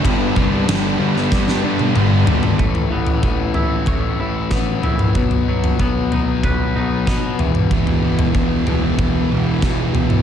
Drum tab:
RD |b---b-----------|----------------|----------------|----------------|
SD |----o--ooo------|------------o---|------------o---|------------o---|
T1 |-----------o----|----------------|----------------|----------------|
T2 |------------o---|---------------o|---------------o|---------------o|
FT |--------------oo|oo-o--o-o-----o-|oo-o--o-o-----o-|oo-o--o-o-----o-|
BD |o-o-----o-------|o---o---o---o---|o---o---o---o---|o---o---o---o---|